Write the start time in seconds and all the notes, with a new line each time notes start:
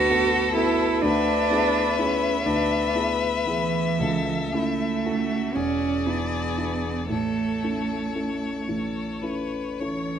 Already playing: D2 D3 B3 F#4 A4 B4
0.10 B3 F#4 A4
0.56 B3 E4 F#4 A4
1.02 D2 D3 D4 B4 E5
1.51 B3 E4 G#4
1.98 B3 C#4 E4 G#4
2.46 D2 D3 D4 B4
2.95 B3 E4 G#4
3.45 E3 B3 E4 G#4
4.00 C#2 C#3 A4
4.53 A3 C#4 E4 A4
5.05 C#4 E4 F#4 A4
5.54 E1 E2 C#4 G#4 D5
6.06 B3 D4 E4 G#4
6.57 D4 E4 G#4
7.10 A1 A2 A3 A4 C#5
7.63 C#4 E4 A4
8.15 C#4 E4 A4
8.68 A1 A2 A4
9.22 C#4 E4 A4 B4
9.80 E3 C#4 E4 A4 C#5